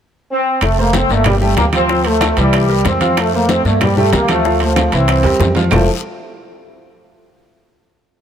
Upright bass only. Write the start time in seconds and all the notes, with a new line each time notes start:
0.62 F1
1.09 G1
1.57 D2
2.37 C2
2.85 F2
3.65 G2
4.13 D2
4.92 C2
5.24 E2
5.40 F2
5.72 F1